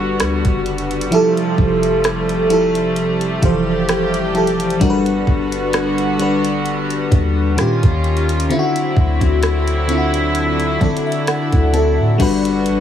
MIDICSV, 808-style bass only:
0, 0, Header, 1, 2, 480
1, 0, Start_track
1, 0, Key_signature, 1, "major"
1, 0, Tempo, 923077
1, 583, Time_signature, 4, 2, 24, 8
1, 6657, End_track
2, 0, Start_track
2, 0, Title_t, "808-style bass"
2, 0, Program_c, 0, 38
2, 0, Note_on_c, 0, 31, 104
2, 103, Note_on_c, 0, 38, 92
2, 111, Note_off_c, 0, 31, 0
2, 226, Note_off_c, 0, 38, 0
2, 234, Note_on_c, 0, 30, 95
2, 570, Note_off_c, 0, 30, 0
2, 823, Note_on_c, 0, 29, 96
2, 1762, Note_off_c, 0, 29, 0
2, 1781, Note_on_c, 0, 29, 94
2, 2481, Note_off_c, 0, 29, 0
2, 2502, Note_on_c, 0, 31, 99
2, 2733, Note_off_c, 0, 31, 0
2, 2742, Note_on_c, 0, 31, 99
2, 3682, Note_off_c, 0, 31, 0
2, 3701, Note_on_c, 0, 39, 106
2, 3943, Note_on_c, 0, 46, 90
2, 3951, Note_off_c, 0, 39, 0
2, 4066, Note_off_c, 0, 46, 0
2, 4074, Note_on_c, 0, 39, 102
2, 4410, Note_off_c, 0, 39, 0
2, 4662, Note_on_c, 0, 38, 97
2, 4787, Note_off_c, 0, 38, 0
2, 4791, Note_on_c, 0, 38, 99
2, 5601, Note_off_c, 0, 38, 0
2, 5621, Note_on_c, 0, 50, 99
2, 5977, Note_off_c, 0, 50, 0
2, 5995, Note_on_c, 0, 38, 105
2, 6232, Note_on_c, 0, 45, 93
2, 6240, Note_off_c, 0, 38, 0
2, 6337, Note_off_c, 0, 45, 0
2, 6344, Note_on_c, 0, 31, 106
2, 6586, Note_on_c, 0, 33, 92
2, 6593, Note_off_c, 0, 31, 0
2, 6657, Note_off_c, 0, 33, 0
2, 6657, End_track
0, 0, End_of_file